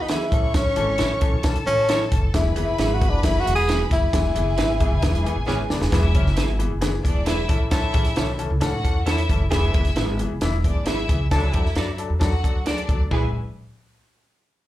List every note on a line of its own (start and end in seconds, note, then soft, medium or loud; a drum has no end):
0.00 0.24 E3 medium
0.00 0.12 D#4 medium
0.00 0.29 B4 medium
0.00 0.29 B5 medium
0.09 0.21 E3 medium
0.09 0.21 B3 medium
0.09 0.22 E4 medium
0.09 0.55 E4 medium
0.09 0.22 G#4 medium
0.09 0.21 G#4 loud
0.09 0.23 B4 medium
0.09 0.23 E5 medium
0.09 snare loud
0.09 closed hi-hat medium
0.32 0.70 A1 loud
0.32 0.68 E3 medium
0.32 0.68 C#4 medium
0.32 0.68 A4 medium
0.32 1.42 C#5 medium
0.32 1.42 C#6 medium
0.32 kick medium
0.32 closed hi-hat medium
0.54 1.36 C#4 medium
0.54 kick loud
0.54 snare loud
0.54 closed hi-hat loud
0.76 0.96 G#1 medium
0.76 0.88 E3 loud
0.76 0.88 C#4 medium
0.76 0.88 A4 loud
0.76 closed hi-hat medium
0.98 1.33 A1 medium
0.98 1.10 E3 medium
0.98 1.11 C#4 medium
0.98 1.11 E4 medium
0.98 1.12 A4 medium
0.98 1.11 B4 medium
0.98 1.12 C#5 medium
0.98 1.12 E5 medium
0.98 snare loud
0.98 closed hi-hat medium
1.21 1.33 E3 medium
1.21 1.33 C#4 medium
1.21 1.33 A4 loud
1.21 kick medium
1.21 closed hi-hat medium
1.33 1.61 B1 medium
1.43 1.55 E3 medium
1.43 1.55 C#4 medium
1.43 1.56 A4 loud
1.43 2.32 A4 medium
1.43 2.32 A5 medium
1.43 kick loud
1.43 snare loud
1.43 closed hi-hat medium
1.56 closed hi-hat medium
1.66 2.04 A1 medium
1.66 1.78 E3 medium
1.66 1.78 C#4 medium
1.66 2.08 C#4 loud
1.66 1.78 A4 medium
1.66 closed hi-hat medium
1.89 2.00 E3 medium
1.89 2.00 C#4 medium
1.89 2.01 E4 medium
1.89 2.02 A4 medium
1.89 2.01 A4 loud
1.89 2.02 C#5 loud
1.89 2.02 E5 medium
1.89 snare loud
1.89 closed hi-hat medium
2.11 2.30 F#1 medium
2.11 2.23 E3 medium
2.11 2.23 C#4 medium
2.11 2.23 A4 medium
2.11 kick medium
2.11 closed hi-hat medium
2.34 2.53 E1 medium
2.34 2.45 E3 loud
2.34 2.46 B3 medium
2.34 2.55 E4 medium
2.34 2.46 G#4 loud
2.34 4.10 B4 medium
2.34 4.10 B5 loud
2.34 kick loud
2.34 snare loud
2.34 closed hi-hat loud
2.56 2.75 F#1 medium
2.56 2.67 E3 loud
2.56 2.68 B3 medium
2.56 2.68 G#4 loud
2.56 closed hi-hat medium
2.64 2.78 E4 medium
2.78 3.12 G#1 loud
2.78 2.90 E3 medium
2.78 2.90 B3 medium
2.78 2.91 E4 medium
2.78 2.96 E4 medium
2.78 2.90 G#4 medium
2.78 2.92 G#4 medium
2.78 2.92 B4 medium
2.78 2.92 E5 medium
2.78 snare medium
2.78 closed hi-hat medium
2.94 3.11 F#4 medium
3.01 3.12 E3 medium
3.01 3.13 B3 medium
3.01 3.13 G#4 medium
3.01 kick loud
3.01 closed hi-hat medium
3.10 3.41 F#1 medium
3.10 3.26 D4 medium
3.23 3.35 E3 medium
3.23 3.35 B3 medium
3.23 3.42 E4 medium
3.23 3.35 G#4 medium
3.23 kick loud
3.23 snare loud
3.23 closed hi-hat loud
3.40 3.54 F#4 loud
3.46 3.84 E1 medium
3.46 3.57 E3 medium
3.46 3.57 B3 medium
3.46 3.58 G#4 medium
3.46 closed hi-hat medium
3.55 3.82 G#4 loud
3.68 3.80 E3 medium
3.68 3.80 B3 medium
3.68 3.81 E4 medium
3.68 3.80 F#4 medium
3.68 3.81 G#4 medium
3.68 3.81 B4 loud
3.68 3.81 E5 loud
3.68 snare loud
3.68 closed hi-hat medium
3.91 4.10 F#1 medium
3.91 4.03 E3 medium
3.91 4.02 B3 medium
3.91 5.45 E4 loud
3.91 4.03 G#4 medium
3.91 kick loud
3.91 closed hi-hat medium
4.13 4.32 E1 medium
4.13 4.25 E3 loud
4.13 4.25 B3 medium
4.13 5.89 G#4 medium
4.13 4.25 G#4 loud
4.13 5.89 G#5 medium
4.13 kick loud
4.13 snare loud
4.13 closed hi-hat loud
4.35 4.58 F#1 medium
4.35 4.47 E3 medium
4.35 4.47 B3 medium
4.35 4.47 G#4 loud
4.35 closed hi-hat medium
4.57 4.86 G#1 medium
4.57 4.69 E3 medium
4.57 4.70 B3 medium
4.57 4.70 E4 medium
4.57 4.71 G#4 medium
4.57 4.69 B4 medium
4.57 4.71 B4 medium
4.57 4.71 E5 medium
4.57 snare loud
4.57 closed hi-hat medium
4.80 4.92 E3 medium
4.80 4.90 E3 medium
4.80 4.90 B3 medium
4.80 4.92 B3 medium
4.80 4.90 G#4 medium
4.80 4.92 G#4 loud
4.80 kick medium
4.80 closed hi-hat medium
4.91 5.01 F#1 medium
5.02 5.22 E1 medium
5.02 5.12 E3 medium
5.02 5.14 E3 medium
5.02 5.12 B3 medium
5.02 5.14 B3 medium
5.02 5.12 G#4 medium
5.02 5.14 G#4 loud
5.02 kick loud
5.02 snare loud
5.02 closed hi-hat medium
5.15 closed hi-hat medium
5.24 5.36 E3 medium
5.24 5.34 E3 medium
5.24 5.34 B3 medium
5.24 5.36 B3 medium
5.24 5.36 G#4 loud
5.24 5.35 G#4 medium
5.24 muted upright bass stroke soft
5.24 closed hi-hat medium
5.36 5.46 A1 medium
5.45 5.57 G#1 medium
5.45 5.89 E3 medium
5.45 5.59 E3 loud
5.45 5.89 B3 medium
5.45 5.59 B3 medium
5.45 5.59 C#4 loud
5.45 5.60 E4 medium
5.45 5.89 G#4 loud
5.45 5.60 G#4 medium
5.45 5.60 B4 medium
5.45 5.61 E5 medium
5.45 snare medium
5.70 5.79 F#1 medium
5.70 5.82 E3 medium
5.70 5.82 B3 medium
5.70 5.82 D4 loud
5.70 snare medium
5.81 5.91 E1 medium
5.81 snare medium
5.91 6.15 E1 loud
5.91 6.24 E3 medium
5.91 6.04 E3 loud
5.91 6.24 B3 medium
5.91 6.04 B3 loud
5.91 6.56 E4 loud
5.91 6.24 G#4 medium
5.91 6.04 G#4 loud
5.91 6.55 E5 loud
5.91 kick loud
5.91 snare loud
5.91 closed hi-hat loud
6.15 6.37 F#1 medium
6.15 6.26 E3 medium
6.15 6.26 B3 medium
6.15 6.27 C#4 loud
6.15 kick loud
6.15 closed hi-hat medium
6.26 snare soft
6.36 6.65 G#1 medium
6.36 6.49 E3 medium
6.36 6.49 B3 medium
6.36 6.50 E4 medium
6.36 6.50 G#4 medium
6.36 6.49 G#4 loud
6.36 6.50 B4 medium
6.36 6.50 E5 medium
6.36 snare medium
6.36 closed hi-hat medium
6.59 6.71 E3 medium
6.59 6.71 B3 medium
6.59 6.71 G#4 loud
6.59 closed hi-hat medium
6.70 6.99 F#1 medium
6.81 6.93 E3 loud
6.81 6.94 B3 loud
6.81 6.94 G#4 loud
6.81 snare loud
6.81 closed hi-hat medium
7.03 7.42 E1 medium
7.03 7.16 E3 medium
7.03 7.16 B3 medium
7.03 7.22 D4 medium
7.03 7.16 G#4 medium
7.03 7.22 D5 medium
7.03 kick medium
7.03 closed hi-hat medium
7.25 7.38 E3 medium
7.25 7.39 B3 medium
7.25 7.58 E4 loud
7.25 7.39 E4 medium
7.25 7.40 G#4 loud
7.25 7.39 G#4 medium
7.25 7.40 B4 medium
7.25 7.58 E5 loud
7.25 7.40 E5 loud
7.25 snare loud
7.25 closed hi-hat medium
7.48 7.87 A1 medium
7.48 7.85 E3 medium
7.48 7.85 C#4 medium
7.48 7.85 A4 medium
7.48 kick medium
7.48 closed hi-hat medium
7.71 8.04 E3 medium
7.71 8.04 C#4 medium
7.71 8.35 E4 loud
7.71 8.04 A4 medium
7.71 8.35 E5 loud
7.71 kick loud
7.71 snare loud
7.71 closed hi-hat medium
7.93 8.13 A1 medium
7.93 8.05 E3 medium
7.93 8.06 C#4 medium
7.93 8.06 G#4 loud
7.93 kick loud
7.93 closed hi-hat medium
8.05 snare soft
8.05 closed hi-hat soft
8.16 8.45 B1 medium
8.16 8.28 E3 medium
8.16 8.29 C#4 medium
8.16 8.29 E4 medium
8.16 8.30 A4 medium
8.16 8.29 A4 medium
8.16 8.30 C#5 medium
8.16 8.30 E5 medium
8.16 snare loud
8.16 closed hi-hat medium
8.38 8.51 E3 medium
8.38 8.51 C#4 medium
8.38 8.51 A4 loud
8.38 closed hi-hat medium
8.50 8.60 C#2 medium
8.60 8.80 A2 loud
8.60 8.73 E3 loud
8.60 8.73 C#4 loud
8.60 9.04 F#4 medium
8.60 8.73 A4 loud
8.60 9.04 F#5 loud
8.60 snare loud
8.60 closed hi-hat medium
8.84 9.22 E2 medium
8.84 8.96 E3 medium
8.84 8.96 C#4 medium
8.84 8.96 A4 medium
8.84 kick medium
8.84 closed hi-hat medium
9.06 9.18 E3 medium
9.06 9.18 C#4 medium
9.06 9.19 E4 loud
9.06 9.38 E4 loud
9.06 9.18 A4 medium
9.06 9.19 A4 medium
9.06 9.20 C#5 medium
9.06 9.38 E5 loud
9.06 9.20 E5 loud
9.06 snare loud
9.06 closed hi-hat medium
9.18 closed hi-hat medium
9.29 9.48 F#1 medium
9.29 9.41 E3 medium
9.29 9.41 C#4 medium
9.29 9.41 A4 medium
9.29 kick medium
9.29 closed hi-hat medium
9.51 9.71 E1 loud
9.51 9.63 E3 loud
9.51 9.83 E3 medium
9.51 9.84 B3 medium
9.51 9.63 B3 loud
9.51 10.16 E4 loud
9.51 9.84 G#4 loud
9.51 9.63 G#4 loud
9.51 10.15 E5 loud
9.51 kick loud
9.51 snare loud
9.51 closed hi-hat medium
9.74 9.93 F#1 medium
9.74 9.86 E3 medium
9.74 9.86 B3 medium
9.74 9.86 G#4 loud
9.74 kick loud
9.74 closed hi-hat medium
9.85 snare soft
9.85 closed hi-hat soft
9.96 10.25 G#1 medium
9.96 10.08 E3 medium
9.96 10.08 B3 medium
9.96 10.09 E4 medium
9.96 10.09 G#4 medium
9.96 10.10 B4 medium
9.96 10.10 E5 medium
9.96 snare loud
9.96 closed hi-hat medium
10.19 10.31 E3 medium
10.19 10.31 B3 medium
10.19 10.31 G#4 loud
10.19 closed hi-hat medium
10.29 10.39 F#1 medium
10.41 10.70 E1 medium
10.41 10.53 E3 loud
10.41 10.54 B3 loud
10.41 10.54 E4 loud
10.41 snare loud
10.41 closed hi-hat medium
10.63 10.76 E3 medium
10.63 10.76 B3 medium
10.63 10.82 D4 medium
10.63 10.76 G#4 medium
10.63 10.82 D5 loud
10.63 kick medium
10.63 closed hi-hat medium
10.75 11.04 G#1 medium
10.86 10.98 E3 medium
10.86 10.98 B3 medium
10.86 10.99 E4 medium
10.86 11.19 E4 loud
10.86 10.99 G#4 medium
10.86 10.98 G#4 medium
10.86 11.00 B4 medium
10.86 11.18 E5 loud
10.86 11.00 E5 loud
10.86 snare medium
10.86 closed hi-hat medium
11.08 11.28 C#2 medium
11.08 11.20 E3 medium
11.08 11.20 B3 medium
11.08 11.21 G#4 medium
11.08 kick medium
11.08 closed hi-hat medium
11.30 11.50 D2 medium
11.30 11.63 F#3 medium
11.30 11.43 F#3 loud
11.30 11.63 D4 medium
11.30 11.43 D4 loud
11.30 11.95 E4 medium
11.30 11.63 A4 loud
11.30 11.43 A4 loud
11.30 11.95 E5 loud
11.30 kick loud
11.30 snare loud
11.30 closed hi-hat medium
11.53 11.73 E2 medium
11.53 11.65 F#3 medium
11.53 11.66 D4 medium
11.53 11.66 A4 medium
11.53 kick medium
11.53 closed hi-hat medium
11.65 snare soft
11.75 12.05 F#2 medium
11.75 11.88 F#3 medium
11.75 11.89 D4 medium
11.75 11.88 D4 medium
11.75 11.89 F#4 medium
11.75 11.88 A4 medium
11.75 11.89 A4 medium
11.75 11.90 D5 medium
11.75 snare loud
11.75 closed hi-hat medium
11.97 12.10 F#3 medium
11.97 12.10 D4 medium
11.97 12.10 A4 medium
11.97 closed hi-hat medium
12.10 12.44 E2 medium
12.19 12.32 F#3 loud
12.19 12.32 D4 medium
12.19 12.64 F#4 medium
12.19 12.32 A4 loud
12.19 12.65 F#5 medium
12.19 kick medium
12.19 snare loud
12.19 closed hi-hat medium
12.43 12.82 D2 medium
12.43 12.55 F#3 medium
12.43 12.55 D4 medium
12.43 12.56 A4 medium
12.43 kick medium
12.43 closed hi-hat medium
12.66 12.78 F#3 medium
12.66 12.79 D4 medium
12.66 12.78 D4 medium
12.66 12.98 D4 medium
12.66 12.79 F#4 medium
12.66 12.78 G#4 medium
12.66 12.79 A4 medium
12.66 12.98 D5 loud
12.66 12.80 D5 medium
12.66 snare loud
12.66 closed hi-hat medium
12.78 closed hi-hat medium
12.88 13.08 D2 medium
12.88 13.00 F#3 medium
12.88 13.01 D4 medium
12.88 13.01 A4 medium
12.88 kick medium
12.88 closed hi-hat medium
13.11 13.32 E1 medium
13.11 13.28 E3 medium
13.11 13.32 G#3 medium
13.11 13.28 B3 medium
13.11 13.32 E4 medium
13.11 13.25 E4 medium
13.11 13.33 E4 medium
13.11 13.25 G#4 medium
13.11 13.28 G#4 medium
13.11 13.32 B4 medium
13.11 13.33 B4 medium
13.11 13.25 B4 medium
13.11 13.26 E5 medium
13.11 13.33 G#5 medium
13.11 kick loud
13.11 floor tom medium